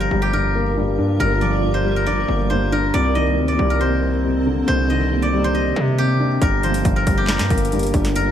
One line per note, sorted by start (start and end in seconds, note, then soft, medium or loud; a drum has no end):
0.00 0.33 G2 medium
0.00 0.77 F3 medium
0.00 2.90 G3 medium
0.00 8.31 A#3 medium
0.00 2.90 F4 medium
0.00 0.21 G4 medium
0.00 2.90 A#4 medium
0.00 0.33 A#4 medium
0.00 1.66 C5 medium
0.00 0.37 D#5 medium
0.11 1.00 G1 loud
0.11 1.20 G3 medium
0.22 2.57 G4 medium
0.33 0.76 G2 medium
0.33 1.20 A#4 medium
0.55 1.64 A#3 medium
0.77 1.19 G2 medium
0.98 1.19 G2 loud
0.98 2.07 D4 medium
1.20 2.25 G1 loud
1.20 1.62 G2 medium
1.20 1.96 A#4 loud
1.41 2.50 F3 medium
1.41 2.06 D5 medium
1.63 2.05 G2 medium
1.74 2.49 C5 medium
1.85 2.94 G3 medium
1.96 2.72 A#4 medium
2.06 2.49 G2 medium
2.06 2.93 D5 medium
2.29 2.91 G1 loud
2.29 2.94 A#3 medium
2.50 2.94 G2 medium
2.50 3.80 C5 medium
2.72 2.94 D4 medium
2.72 3.70 A#4 medium
2.94 3.39 C2 loud
2.94 6.38 C3 medium
2.94 3.36 C3 medium
2.94 6.38 C4 medium
2.94 3.21 D5 loud
2.94 6.38 D#5 medium
3.15 4.24 D#3 medium
3.15 3.54 D#5 medium
3.37 3.58 D2 loud
3.37 3.79 C3 medium
3.48 4.96 D5 medium
3.59 4.64 C2 loud
3.59 4.68 G3 medium
3.70 5.82 A#4 medium
3.80 4.23 C3 medium
3.80 4.67 C5 medium
4.02 5.11 C4 medium
4.24 4.66 C3 medium
4.46 5.55 D3 medium
4.67 5.72 C2 loud
4.67 5.10 C3 medium
4.67 5.44 C5 loud
4.89 5.98 D#3 medium
4.89 5.28 D#5 medium
5.11 5.53 C3 medium
5.22 5.61 D5 medium
5.33 6.42 G3 medium
5.44 6.63 C5 medium
5.55 5.97 C3 medium
5.55 7.33 D#5 medium
5.76 6.39 C3 loud
5.76 6.42 C4 medium
5.98 6.42 C3 medium
5.98 7.17 G4 medium
6.20 6.42 D4 medium
6.42 6.83 G1 loud
6.42 6.83 G2 medium
6.42 8.31 G3 medium
6.42 8.31 F4 medium
6.42 8.31 A#4 medium
6.42 6.96 A#4 loud
6.42 kick loud
6.42 closed hi-hat medium
6.63 7.72 F3 medium
6.63 8.31 C5 medium
6.63 closed hi-hat soft
6.74 closed hi-hat medium
6.85 7.06 G1 loud
6.85 7.27 G2 medium
6.85 kick loud
6.85 closed hi-hat medium
6.96 7.29 A#4 medium
7.07 7.41 G1 loud
7.07 8.16 G3 medium
7.07 kick loud
7.07 closed hi-hat medium
7.18 8.31 G4 medium
7.28 7.71 G2 medium
7.28 8.15 A#4 medium
7.28 snare loud
7.28 clap loud
7.28 closed hi-hat soft
7.39 7.50 G2 medium
7.39 snare loud
7.39 clap medium
7.39 closed hi-hat medium
7.50 7.92 G1 loud
7.50 8.31 A#3 medium
7.50 kick medium
7.50 closed hi-hat medium
7.58 closed hi-hat medium
7.65 closed hi-hat medium
7.72 8.14 G2 medium
7.72 closed hi-hat medium
7.79 closed hi-hat medium
7.83 closed hi-hat medium
7.87 closed hi-hat medium
7.94 8.31 G1 loud
7.94 8.31 D4 medium
7.94 kick loud
7.94 closed hi-hat medium
8.05 snare medium
8.05 closed hi-hat medium
8.16 8.31 G2 medium
8.16 8.31 A#4 loud
8.16 closed hi-hat medium